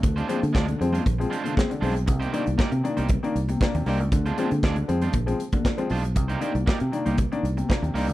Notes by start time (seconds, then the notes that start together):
0.02 D2 D3, muted clean electric guitar stroke, kick, closed hi-hat, muted conga
0.16 G#3 C4 D4 F4 C5, closed hi-hat, muted conga
0.28 F3 G#3 C4 D4 F4 C5, closed hi-hat, high conga
0.42 D3, muted clean electric guitar stroke, closed hi-hat, high conga
0.53 D2 G#3 C4 D4 F4 D5, kick, snare, clap, muted conga
0.67 D3, muted clean electric guitar stroke, closed hi-hat, muted conga
0.79 F2 F3 G#3 C4, muted clean electric guitar stroke, closed hi-hat
0.92 G#3 D4 F4 C5, closed hi-hat, high conga, low conga
1.05 A#1, muted clean electric guitar stroke, kick, closed hi-hat
1.19 F3 G#3 C4, muted clean electric guitar stroke, closed hi-hat
1.30 G#3 D4 F4 C5, closed hi-hat
1.44 D3 G#3 D4 F4 C5, closed hi-hat, high conga
1.56 G#3 C4, muted clean electric guitar stroke, kick, snare, clap
1.69 D3, muted clean electric guitar stroke, closed hi-hat, muted conga
1.81 B1 G#3 C4 D4 F4 C5, open hi-hat, low conga
1.95 muted clean electric guitar stroke, closed hi-hat
2.06 C2 C3, muted clean electric guitar stroke, kick, closed hi-hat, muted conga
2.20 A#3 D4 D#4 G4 C5, closed hi-hat, muted conga
2.32 D#3 A#3 D4 D#4 G4 C5, closed hi-hat, high conga
2.46 C2, muted clean electric guitar stroke, closed hi-hat, high conga
2.58 A#3 D4 D#4 G4 D5, kick, snare, clap
2.72 C3, muted clean electric guitar stroke, closed hi-hat
2.84 D#3 A#3 D4, muted clean electric guitar stroke, closed hi-hat
2.97 C2 A#3 D#4 G4 C5, closed hi-hat, high conga, low conga
3.08 muted clean electric guitar stroke, kick, closed hi-hat, muted conga
3.23 D#3 A#3 D4, muted clean electric guitar stroke, closed hi-hat, muted conga
3.35 C2, closed hi-hat
3.48 C3, muted clean electric guitar stroke, closed hi-hat, high conga
3.61 A#3 D4, muted clean electric guitar stroke, kick, snare, clap
3.74 D#2 C3, muted clean electric guitar stroke, closed hi-hat, muted conga
3.86 C2 A#3 D4 D#4 G4 C5, snare, open hi-hat, low conga
4.00 C#2, muted clean electric guitar stroke, closed hi-hat
4.11 D2 D3, muted clean electric guitar stroke, kick, closed hi-hat, muted conga
4.25 G#3 C4 D4 F4 C5, closed hi-hat, muted conga
4.37 F3 G#3 C4 D4 F4 C5, closed hi-hat, high conga
4.51 D3, muted clean electric guitar stroke, closed hi-hat, high conga
4.63 D2 G#3 C4 D4 F4 D5, kick, snare, clap
4.76 D3, muted clean electric guitar stroke, closed hi-hat, muted conga
4.88 F2 F3 G#3 C4, muted clean electric guitar stroke, closed hi-hat
5.02 G#3 D4 F4 C5, closed hi-hat, high conga, low conga
5.13 A#1, muted clean electric guitar stroke, kick, closed hi-hat, muted conga
5.26 F3 G#3 C4, muted clean electric guitar stroke, closed hi-hat, muted conga
5.40 closed hi-hat
5.52 D3, muted clean electric guitar stroke, kick, closed hi-hat, high conga
5.64 D3, muted clean electric guitar stroke, kick, snare, clap
5.78 F3 G#3 C4, muted clean electric guitar stroke, closed hi-hat, muted conga
5.90 B1 G#3 C4 D4 F4 C5, open hi-hat, low conga
6.04 muted clean electric guitar stroke, closed hi-hat
6.15 C2 C3, muted clean electric guitar stroke, kick, closed hi-hat
6.28 A#3 D4 D#4 G4 C5, closed hi-hat, muted conga
6.41 D#3 A#3 D4 D#4 G4 C5, closed hi-hat, high conga
6.54 C2, muted clean electric guitar stroke, closed hi-hat, high conga
6.66 A#3 D4 D#4 G4 D5, kick, snare, clap, muted conga
6.79 C3, muted clean electric guitar stroke, closed hi-hat
6.92 D#3 A#3 D4, muted clean electric guitar stroke, closed hi-hat
7.06 C2 A#3 D#4 G4 C5, closed hi-hat, high conga, low conga
7.18 muted clean electric guitar stroke, kick, closed hi-hat, muted conga
7.32 D#3 A#3 D4, muted clean electric guitar stroke, closed hi-hat, muted conga
7.43 C2, closed hi-hat
7.57 C3, muted clean electric guitar stroke, closed hi-hat, high conga
7.69 A#3 D4, muted clean electric guitar stroke, kick, snare, clap, muted conga
7.82 D#2 C3, muted clean electric guitar stroke, closed hi-hat, muted conga
7.94 C2 A#3 D4 D#4 G4 C5, snare, open hi-hat, low conga
8.08 C#2, muted clean electric guitar stroke, closed hi-hat